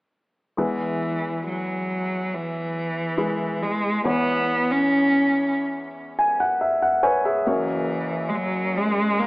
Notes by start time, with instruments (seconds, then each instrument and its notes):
0.57 grand piano E2 E3 G#3 E4 B4
0.62 cello E3
1.49 cello F#3
2.35 cello E3
3.18 grand piano G#3 E4 B4
3.62 cello G#3
4.04 grand piano E2 E3 B3 E4 C#5, cello B3
4.71 cello C#4
6.19 grand piano G#5
6.40 grand piano F#5
6.61 grand piano E5
6.82 grand piano F#5
7.03 grand piano B4 C#5 G#5
7.25 grand piano G#4 E5
7.46 grand piano F#1 F#2 A#3 F#4 C#5, cello E3
8.29 cello G#3
8.35 cello F#3
8.77 cello G#3
9.20 cello A#3